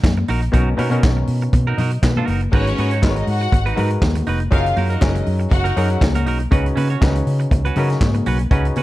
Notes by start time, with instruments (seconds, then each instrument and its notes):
0.04 fingered electric bass F#2, kick, snare, clap, closed hi-hat, high conga
0.17 muted clean electric guitar stroke, high conga
0.28 fingered electric bass A#1, clean electric guitar D#4 F#4 A#4, open hi-hat
0.42 muted clean electric guitar stroke, closed hi-hat
0.52 fingered electric bass B1, clav B2 B3 C#4 D#4 A#4, clean electric guitar D#4 F#4 A#4, kick, closed hi-hat, muted conga
0.77 clav B2 B3 C#4 D#4 B4, fingered electric bass B2, clean electric guitar D#4 F#4 A#4, open hi-hat, muted conga
0.90 clav B2 B3 C#4 D#4 A#4, clean electric guitar D#4 F#4 A#4, closed hi-hat
1.03 fingered electric bass B1, kick, snare, clap, closed hi-hat, high conga
1.17 muted clean electric guitar stroke
1.27 fingered electric bass B2, open hi-hat
1.41 muted clean electric guitar stroke, closed hi-hat
1.53 fingered electric bass B2, muted clean electric guitar stroke, kick, closed hi-hat, muted conga
1.67 clean electric guitar D#4 F#4 A#4
1.78 fingered electric bass B2, clean electric guitar D#4 F#4 A#4, clav D#5, open hi-hat, low conga
1.91 muted clean electric guitar stroke, closed hi-hat
2.03 fingered electric bass B2, clav B4, muted clean electric guitar stroke, kick, snare, clap, closed hi-hat, high conga
2.16 clean electric guitar D#4 F#4 A#4, high conga
2.27 fingered electric bass F#1, clean electric guitar D#4 F#4 A#4, open hi-hat
2.41 muted clean electric guitar stroke, closed hi-hat
2.52 fingered electric bass G#1, clav G#3 D#4 F#4 A#4 B4, string section C#4 C#5, clean electric guitar D#4 F#4 B4, kick, crash
2.67 closed hi-hat
2.78 fingered electric bass G#2, clean electric guitar D#4 F#4 B4, open hi-hat, muted conga
2.91 clean electric guitar D#4 F#4 C#5, closed hi-hat
3.02 fingered electric bass G#1, clav G#3 D#4 F#4 A#4 C5, string section B3 B4, kick, snare, clap, high conga
3.10 clav C#5
3.16 string section D#4 D#5, muted clean electric guitar stroke, closed hi-hat
3.27 fingered electric bass G#2, string section F#4 F#5, open hi-hat
3.41 muted clean electric guitar stroke, closed hi-hat
3.52 fingered electric bass G#1, muted clean electric guitar stroke, kick, closed hi-hat, muted conga
3.66 clean electric guitar D#4 F#4 B4, closed hi-hat
3.76 fingered electric bass G#2, clav G#3 D#4 F#4 A#4 B4, clean electric guitar D#4 F#4 B4, open hi-hat, low conga
3.90 closed hi-hat
4.02 fingered electric bass D#2, kick, snare, clap, high conga
4.15 muted clean electric guitar stroke, closed hi-hat, high conga
4.26 fingered electric bass F1, clean electric guitar D#4 F#4 B4, open hi-hat
4.40 muted clean electric guitar stroke, closed hi-hat
4.51 fingered electric bass F#1, clav F#3 C#4 D#4 G#4 A#4, clean electric guitar D#4 F#4 A#4, string section F4 F5, kick, closed hi-hat, muted conga
4.66 closed hi-hat
4.76 fingered electric bass F#2, clean electric guitar D#4 F#4 A#4, open hi-hat, muted conga
4.90 string section D#4 D#5, clean electric guitar D#4 F#4 A#4, closed hi-hat
5.01 fingered electric bass F#1, clav F#3 C#4 D#4 G#4 A#4, kick, snare, clap, high conga
5.15 muted clean electric guitar stroke, closed hi-hat
5.26 fingered electric bass F#2, open hi-hat
5.40 muted clean electric guitar stroke, closed hi-hat
5.51 fingered electric bass F#1, string section F#4 F#5, muted clean electric guitar stroke, kick, closed hi-hat, muted conga
5.64 clean electric guitar D#4 F#4 A#4, closed hi-hat
5.76 fingered electric bass F#2, clav F#3 C#4 D#4 G#4 A#4, clean electric guitar D#4 F#4 A#4, open hi-hat
5.90 closed hi-hat
6.01 fingered electric bass C#2, muted clean electric guitar stroke, kick, snare, clap, high conga
6.14 clean electric guitar D#4 F#4 A#4, closed hi-hat, high conga
6.26 fingered electric bass B1, clean electric guitar D#4 F#4 A#4, open hi-hat
6.39 muted clean electric guitar stroke, closed hi-hat
6.51 fingered electric bass C#2, clav C#3 C#4 D#4 F#4 B4, clean electric guitar C#4 F#4 B4, kick, closed hi-hat, muted conga
6.66 closed hi-hat
6.75 fingered electric bass C#3, clean electric guitar C#4 F#4 B4, open hi-hat, muted conga
6.90 clean electric guitar C#4 F#4 C#5, closed hi-hat
7.01 fingered electric bass C#2, clav C#3 C#4 D#4 F#4 B4, kick, snare, clap, high conga
7.15 muted clean electric guitar stroke, closed hi-hat
7.27 fingered electric bass C#3, open hi-hat
7.40 muted clean electric guitar stroke, closed hi-hat
7.51 fingered electric bass C#2, muted clean electric guitar stroke, kick, closed hi-hat, muted conga
7.65 clean electric guitar C#4 F#4 B4, closed hi-hat
7.76 fingered electric bass C#3, clav C#3 C#4 D#4 F#4 A#4, clean electric guitar C#4 F#4 B4, open hi-hat, low conga
7.90 snare, closed hi-hat
8.01 fingered electric bass G#2, kick, snare, clap, high conga
8.14 muted clean electric guitar stroke, closed hi-hat, high conga
8.26 fingered electric bass B1, clean electric guitar C#4 F#4 B4, open hi-hat
8.39 muted clean electric guitar stroke, closed hi-hat
8.51 fingered electric bass C#2, clav C#3 C#4 D#4 F#4 B4, clean electric guitar C#4 F#4 B4, kick, closed hi-hat, muted conga
8.65 closed hi-hat
8.76 fingered electric bass C#3, clean electric guitar C#4 F#4 B4, open hi-hat, muted conga